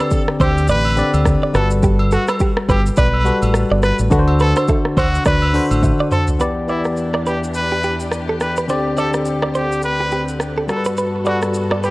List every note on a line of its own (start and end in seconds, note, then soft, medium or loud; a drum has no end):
0.00 0.47 D3 medium
0.00 0.47 C4 medium
0.00 0.48 G4 medium
0.00 0.12 B4 medium
0.00 0.51 D5 loud
0.00 cross-stick medium
0.00 high agogo medium
0.11 0.22 A4 loud
0.11 kick loud
0.11 shaker medium
0.28 cross-stick medium
0.40 0.70 D2 loud
0.40 0.65 G4 medium
0.40 0.51 C5 medium
0.40 kick loud
0.40 high agogo medium
0.40 shaker medium
0.58 shaker medium
0.68 1.01 A1 medium
0.68 1.12 B4 loud
0.68 0.86 D5 medium
0.68 shaker medium
0.85 high agogo medium
0.96 1.54 D3 medium
0.96 1.54 C4 medium
0.96 1.55 G4 medium
0.96 1.55 D5 medium
0.96 shaker soft
1.14 1.34 D2 medium
1.14 high agogo medium
1.14 shaker medium
1.25 kick medium
1.25 cross-stick medium
1.25 shaker medium
1.43 1.50 D5 medium
1.53 2.16 G1 loud
1.53 2.47 G3 medium
1.53 2.47 F#4 medium
1.53 2.48 A4 medium
1.53 1.69 A4 medium
1.53 1.65 B4 medium
1.53 2.48 B4 medium
1.53 cross-stick medium
1.53 shaker medium
1.70 shaker medium
1.83 1.93 G4 medium
1.83 kick loud
1.83 shaker medium
1.99 high agogo medium
2.11 2.26 F#4 medium
2.11 2.22 A4 medium
2.11 shaker soft
2.28 2.36 B4 medium
2.28 cross-stick medium
2.28 high agogo medium
2.28 shaker medium
2.39 2.51 G4 loud
2.39 kick loud
2.39 shaker medium
2.57 cross-stick medium
2.69 2.89 G1 loud
2.69 2.83 G4 medium
2.69 2.79 B4 medium
2.69 kick medium
2.69 high agogo medium
2.69 shaker medium
2.86 shaker medium
2.97 3.30 B1 medium
2.97 3.40 B4 loud
2.97 3.15 D5 medium
2.97 kick loud
2.97 shaker medium
3.14 high agogo medium
3.25 3.96 G3 medium
3.25 3.96 F#4 medium
3.25 3.97 A4 medium
3.25 3.97 B4 medium
3.25 shaker soft
3.42 3.63 A1 medium
3.42 high agogo medium
3.42 shaker medium
3.54 cross-stick medium
3.54 shaker medium
3.71 3.91 G1 medium
3.71 3.79 D5 medium
3.83 3.93 B4 medium
3.83 3.98 B4 medium
3.83 cross-stick medium
3.83 shaker medium
3.99 4.08 A1 medium
3.99 shaker medium
4.10 4.53 D2 loud
4.10 5.04 D3 medium
4.10 5.04 D4 medium
4.10 5.05 F#4 medium
4.10 4.22 A4 medium
4.10 4.20 B4 medium
4.10 kick loud
4.10 shaker medium
4.19 5.08 C5 loud
4.28 high agogo medium
4.40 4.55 A4 medium
4.40 4.51 B4 medium
4.40 shaker medium
4.56 4.64 C5 medium
4.56 cross-stick medium
4.56 high agogo medium
4.56 shaker medium
4.68 4.79 A4 loud
4.68 kick loud
4.68 low woodblock medium
4.68 shaker medium
4.85 cross-stick medium
4.97 5.18 D2 loud
4.97 5.22 F#4 medium
4.97 5.08 C5 medium
4.97 kick loud
4.97 high agogo medium
4.97 shaker medium
5.15 shaker medium
5.25 5.58 D2 medium
5.25 5.69 B4 loud
5.25 5.43 D5 medium
5.25 kick loud
5.25 cross-stick medium
5.25 shaker medium
5.42 high agogo medium
5.53 6.25 D3 medium
5.53 6.25 D4 medium
5.53 6.25 F#4 medium
5.53 6.26 C5 medium
5.53 open hi-hat soft
5.53 shaker soft
5.71 5.91 A1 medium
5.71 high agogo medium
5.71 shaker medium
5.83 kick medium
5.83 high tom medium
5.83 low woodblock medium
5.83 shaker medium
6.00 6.07 D5 medium
6.12 6.26 A4 medium
6.12 6.22 C5 medium
6.12 mid tom medium
6.12 shaker medium
6.28 floor tom loud
6.28 shaker medium
6.39 8.66 E2 medium
6.39 6.63 E3 medium
6.39 8.66 E3 medium
6.39 6.64 B3 medium
6.39 8.66 D4 medium
6.39 10.65 G4 medium
6.39 6.64 G4 medium
6.39 6.51 B4 medium
6.39 6.65 D5 loud
6.39 shaker medium
6.68 7.61 E3 medium
6.68 7.61 B3 medium
6.68 6.83 E4 medium
6.68 7.62 G4 medium
6.68 6.79 D5 medium
6.68 7.62 D5 medium
6.68 shaker soft
6.85 cross-stick medium
6.85 shaker medium
6.97 shaker medium
7.14 7.22 D5 medium
7.14 cross-stick medium
7.26 7.41 G4 medium
7.26 7.36 B4 medium
7.26 shaker soft
7.43 shaker medium
7.54 7.97 B4 medium
7.54 shaker medium
7.72 7.79 G4 medium
7.83 7.93 G4 medium
7.83 shaker soft
8.00 shaker medium
8.11 cross-stick medium
8.11 shaker medium
8.29 8.36 A4 medium
8.40 8.55 B4 medium
8.40 cross-stick medium
8.40 shaker medium
8.56 8.64 B4 medium
8.56 shaker medium
8.68 10.67 D2 medium
8.68 8.92 D3 medium
8.68 10.67 D3 medium
8.68 8.92 C4 medium
8.68 10.67 C4 medium
8.68 8.93 G4 medium
8.68 8.79 C5 loud
8.68 8.93 D5 loud
8.68 shaker medium
8.96 9.90 D3 medium
8.96 9.90 C4 medium
8.96 9.91 G4 medium
8.96 9.12 A4 medium
8.96 9.08 D5 medium
8.96 9.91 D5 medium
8.96 shaker soft
9.13 cross-stick medium
9.13 shaker medium
9.25 shaker medium
9.42 9.50 D5 medium
9.42 cross-stick medium
9.55 9.79 G4 medium
9.55 9.65 C5 medium
9.55 shaker soft
9.72 shaker medium
9.82 10.26 B4 loud
9.82 shaker medium
10.00 10.07 G4 medium
10.11 10.22 G4 medium
10.11 shaker soft
10.28 shaker medium
10.40 cross-stick medium
10.40 shaker medium
10.58 10.64 A4 medium
10.68 11.90 G2 medium
10.68 11.16 G3 medium
10.68 11.90 B3 medium
10.68 11.16 F#4 medium
10.68 11.90 F#4 medium
10.68 11.90 A4 medium
10.68 11.17 A4 medium
10.68 10.84 A4 medium
10.68 10.77 A#4 medium
10.68 cross-stick medium
10.68 shaker medium
10.77 11.20 B4 medium
10.85 10.93 B4 medium
10.85 shaker medium
10.97 11.08 B4 medium
10.97 shaker medium
11.25 11.90 G3 medium
11.25 11.90 F#4 medium
11.25 11.41 F#4 medium
11.25 11.90 A4 medium
11.25 11.90 B4 medium
11.25 11.36 D5 medium
11.25 shaker soft
11.42 cross-stick medium
11.42 shaker medium
11.54 shaker medium
11.71 11.79 D5 medium
11.71 cross-stick medium
11.83 11.90 G4 medium
11.83 11.90 B4 medium
11.83 shaker medium